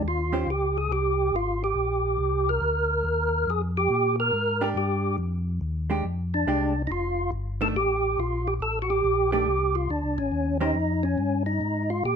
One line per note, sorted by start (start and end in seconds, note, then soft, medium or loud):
0.03 0.45 D#2 medium
0.08 0.50 F4 medium
0.32 0.46 D#3 medium
0.32 0.46 C#4 medium
0.32 0.46 G4 medium
0.32 0.46 C5 medium
0.47 0.89 C#2 medium
0.47 0.77 G4 medium
0.78 0.92 G#4 medium
0.89 1.31 C2 medium
0.89 1.35 G4 medium
1.32 1.74 G#1 medium
1.32 1.63 F4 medium
1.64 2.50 G4 medium
1.75 2.17 A#1 medium
2.18 2.60 C2 medium
2.49 3.51 A#4 loud
2.61 3.03 D2 medium
3.04 3.46 D#2 medium
3.47 3.89 F2 medium
3.47 3.62 G#4 medium
3.77 4.16 G4 loud
3.90 4.32 A#2 medium
4.20 4.63 A#4 loud
4.33 4.74 G#2 medium
4.61 5.16 D4 medium
4.61 5.16 G4 medium
4.61 4.70 A#4 medium
4.75 5.17 G2 medium
4.75 5.16 G4 medium
5.18 5.60 F2 medium
5.61 6.03 D#2 medium
5.90 6.03 G#3 medium
5.90 6.03 D4 medium
5.90 6.03 G4 medium
6.04 6.46 F2 medium
6.34 6.82 D4 medium
6.47 6.89 C2 medium
6.47 6.72 G#3 medium
6.47 6.72 D4 medium
6.47 6.73 G4 medium
6.87 7.31 F1 medium
6.87 6.91 D#4 medium
6.92 7.31 F4 medium
7.32 7.74 G1 medium
7.61 7.74 D#3 medium
7.61 7.74 A3 medium
7.61 7.75 D4 medium
7.61 7.68 A4 loud
7.75 8.17 A1 medium
7.75 8.20 G4 loud
8.18 8.60 A#1 medium
8.18 8.48 F4 medium
8.47 8.54 G4 medium
8.60 9.02 A1 medium
8.60 8.79 A4 medium
8.82 8.90 F#4 medium
8.90 9.31 G4 loud
9.04 9.46 A#1 medium
9.32 9.46 D#3 medium
9.32 9.46 A3 medium
9.32 9.46 D4 medium
9.32 9.76 G4 loud
9.46 9.88 C2 medium
9.75 9.90 F4 medium
9.89 10.03 D2 medium
9.89 10.19 D4 medium
10.03 10.18 C2 medium
10.17 10.31 A1 medium
10.17 10.58 C#4 medium
10.32 10.74 D#2 medium
10.60 10.74 D#3 medium
10.60 10.74 C#4 medium
10.60 11.05 D#4 medium
10.60 10.74 G4 medium
10.60 10.74 C5 medium
10.74 11.16 F2 medium
11.03 11.43 C#4 medium
11.18 11.60 G2 medium
11.46 11.90 D#4 medium
11.61 12.03 G#2 medium
11.90 12.04 F4 medium
12.04 12.16 A#2 medium
12.04 12.16 G4 medium